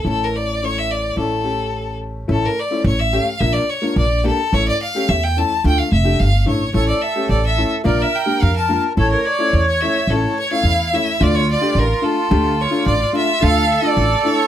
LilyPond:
<<
  \new Staff \with { instrumentName = "Violin" } { \time 2/4 \tempo 4 = 108 a'16 bes'16 d''8 cis''16 e''16 d''8 | a'4. r8 | a'16 bes'16 d''8 cis''16 e''16 f''8 | e''16 d''16 cis''8 d''8 a'8 |
cis''16 d''16 f''8 e''16 g''16 a''8 | g''16 f''16 e''8 f''8 cis''8 | cis''16 d''16 e''8 d''16 e''8 r16 | d''16 e''16 g''8 f''16 a''8 r16 |
a'16 bes'16 d''8. cis''16 e''8 | a'8 cis''16 f''8. e''8 | d''16 cis''16 d''8 bes'8 a'8~ | a'8 cis''8 d''8 e''8 |
f''8 d''4 cis''8 | }
  \new Staff \with { instrumentName = "Accordion" } { \time 2/4 r2 | r2 | r2 | r2 |
r2 | r2 | a'2 | bes'2 |
cis''2 | cis''4 e'4 | f'2~ | f'2 |
a'2 | }
  \new Staff \with { instrumentName = "Upright piano" } { \time 2/4 <a cis' e'>4 <a cis' e'>4 | <a cis' e'>8 <a cis' g'>4. | <a cis' e'>8 r16 <a cis' e'>16 r8 <a cis' g'>16 r16 | <bes d' f'>8 r16 <bes d' f'>16 r8 <bes d' g'>16 r16 |
<a cis' e'>8 r16 <a cis' g'>16 r8 <a cis' e'>16 r16 | <a d' f'>8 r16 <a d' g'>16 r8 <a d' e'>16 r16 | <a cis' e'>8 r16 <a cis' g'>16 r8 <a cis' e'>16 r16 | <bes d' f'>8 r16 <bes d' g'>16 r8 <bes d' f'>16 r16 |
<a cis' e'>8 r16 <a cis' e'>16 r8 <a cis' e'>16 r16 | <a cis' e'>8 r16 <a cis' e'>16 r8 <a cis' e'>16 r16 | <a d' f'>8 r16 <a d' g'>16 r8 <a d' f'>16 r16 | <a d' g'>8 r16 <a d' f'>16 r8 <a d' f'>16 r16 |
<a d' f'>8 r16 <a d' f'>16 r8 <a d' e'>16 r16 | }
  \new Staff \with { instrumentName = "Upright bass" } { \clef bass \time 2/4 a,,2 | a,,2 | a,,8 r8 a,,4 | bes,,8 r8 bes,,4 |
a,,8 r8 e,4 | d,8 f,,8 g,,8 a,,8 | a,,8 r8 a,,4 | bes,,8 r8 f,4 |
a,,8 r8 e,4 | a,,8 r8 e,4 | d,4 a,,8 r8 | d,4 a,,8 r8 |
d,4 a,,8 r8 | }
>>